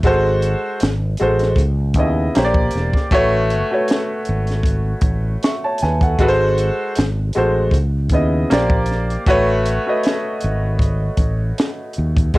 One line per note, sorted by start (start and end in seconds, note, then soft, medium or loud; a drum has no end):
0.03 0.54 G#1 loud
0.03 0.81 G#3 medium
0.03 0.81 F#4 loud
0.03 0.81 A4 medium
0.03 0.82 C5 loud
0.03 kick loud
0.03 closed hi-hat medium
0.42 closed hi-hat medium
0.80 1.14 G#1 loud
0.80 snare loud
0.80 closed hi-hat medium
1.17 1.53 A1 loud
1.17 1.58 G#3 medium
1.17 1.58 F#4 medium
1.17 1.58 A4 medium
1.17 closed hi-hat medium
1.22 1.59 C5 medium
1.39 snare soft
1.39 closed hi-hat soft
1.56 1.95 C#2 loud
1.56 kick medium
1.56 closed hi-hat medium
1.94 2.28 D#2 medium
1.94 2.35 C#3 medium
1.94 2.35 B3 medium
1.94 kick medium
1.94 closed hi-hat medium
1.99 2.36 E4 medium
1.99 2.36 D#5 medium
2.35 2.68 A#1 loud
2.35 2.97 A#3 medium
2.35 2.98 G4 medium
2.35 2.98 C5 medium
2.35 2.43 C#5 medium
2.35 snare loud
2.35 closed hi-hat medium
2.44 3.02 D5 medium
2.54 kick loud
2.71 closed hi-hat medium
2.75 2.92 E1 medium
2.75 snare soft
2.93 kick medium
2.93 snare soft
3.11 3.62 A1 loud
3.11 3.58 A3 loud
3.11 3.58 F#4 medium
3.11 3.59 B4 medium
3.11 3.59 C#5 loud
3.11 kick loud
3.11 closed hi-hat medium
3.50 closed hi-hat medium
3.71 4.92 A3 medium
3.71 4.92 F#4 medium
3.71 4.93 B4 medium
3.71 4.93 C#5 medium
3.88 snare loud
3.88 closed hi-hat medium
4.25 4.93 G#1 medium
4.25 closed hi-hat medium
4.47 snare soft
4.47 closed hi-hat soft
4.63 kick medium
4.63 closed hi-hat medium
5.01 5.36 A1 medium
5.01 kick medium
5.01 closed hi-hat medium
5.43 5.63 E5 medium
5.43 5.63 C#6 medium
5.43 snare loud
5.43 closed hi-hat medium
5.64 5.81 C#5 medium
5.64 5.80 A5 medium
5.78 closed hi-hat medium
5.82 6.14 D#2 medium
5.82 6.01 B4 medium
5.82 6.01 G#5 medium
5.82 snare soft
6.01 6.19 A4 medium
6.01 6.38 F#5 medium
6.01 kick medium
6.01 closed hi-hat soft
6.19 6.69 G#1 medium
6.19 6.96 G#3 loud
6.19 6.96 F#4 loud
6.19 6.97 A4 loud
6.19 6.27 B4 medium
6.19 kick medium
6.19 closed hi-hat medium
6.28 7.00 C5 loud
6.58 closed hi-hat medium
6.95 7.30 G#1 loud
6.95 snare loud
6.95 closed hi-hat medium
7.33 7.68 A1 medium
7.33 7.73 G#3 medium
7.33 7.73 F#4 medium
7.33 7.74 A4 medium
7.33 closed hi-hat medium
7.38 7.74 C5 loud
7.71 8.11 C#2 loud
7.71 kick medium
7.71 closed hi-hat medium
8.09 8.44 D#2 medium
8.09 8.50 C#3 medium
8.09 8.50 B3 medium
8.09 8.51 E4 medium
8.09 kick medium
8.09 closed hi-hat medium
8.14 8.51 D#5 medium
8.50 9.16 A#1 medium
8.50 9.13 A#3 medium
8.50 9.13 G4 medium
8.50 9.13 C5 medium
8.50 9.14 D5 medium
8.50 snare loud
8.50 closed hi-hat medium
8.70 kick loud
8.86 closed hi-hat medium
8.91 snare soft
9.10 closed hi-hat soft
9.26 9.77 A1 medium
9.26 9.73 A3 loud
9.26 9.73 F#4 loud
9.26 9.74 B4 loud
9.26 9.74 C#5 loud
9.26 kick loud
9.26 closed hi-hat medium
9.66 closed hi-hat medium
9.86 11.07 A3 medium
9.86 11.08 F#4 medium
9.86 11.08 B4 medium
9.86 11.09 D#5 medium
10.04 snare loud
10.04 closed hi-hat medium
10.41 11.08 G#1 loud
10.41 closed hi-hat medium
10.79 kick medium
10.79 closed hi-hat medium
11.17 11.51 A1 loud
11.17 kick medium
11.17 closed hi-hat medium
11.58 snare loud
11.58 closed hi-hat medium
11.93 closed hi-hat medium
11.98 12.30 D#2 medium
12.17 kick medium
12.17 closed hi-hat medium
12.34 12.38 G#3 loud
12.34 kick medium
12.34 closed hi-hat medium